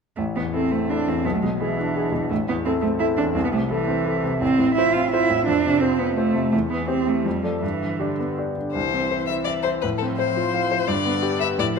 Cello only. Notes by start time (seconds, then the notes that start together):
0.16 A3
0.36 B3
0.54 C4
0.71 A3
0.90 D4
1.08 C4
1.26 B3
1.34 A3
1.42 G#3
1.59 E3
2.30 A3
2.48 B3
2.65 C4
2.82 A3
2.99 E4
3.17 D4
3.34 C4
3.44 B3
3.53 A3
3.70 E3
4.42 C4
4.75 E4
4.94 F4
5.11 E4
5.46 D4
5.80 C4
5.99 B3
6.16 A3
6.51 A3
6.71 B3
6.89 C4
7.08 A3
7.25 G3
7.43 F3
7.62 E3
8.00 D3
8.74 E3
9.83 F3
10.89 D3
11.59 F3